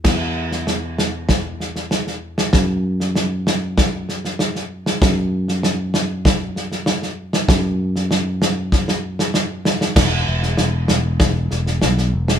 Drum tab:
CC |x---------------|----------------|----------------|----------------|
SD |o--oo-o-o-oooo-o|o--oo-o-o-oooo-o|o--oo-o-o-oooo-o|o--oo-o-oo-oo-oo|
BD |o-------o-------|o-------o-------|o-------o-------|o-------o-------|

CC |x---------------|
SD |o--oo-o-o-oooo-o|
BD |o-------o-------|